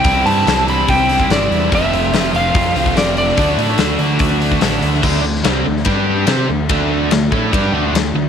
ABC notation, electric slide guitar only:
X:1
M:4/4
L:1/8
Q:1/4=144
K:Clyd
V:1 name="Electric slide guitar"
g a2 b g2 d2 | e3 =f3 d d- | d4- d z3 | z8 |
z8 |]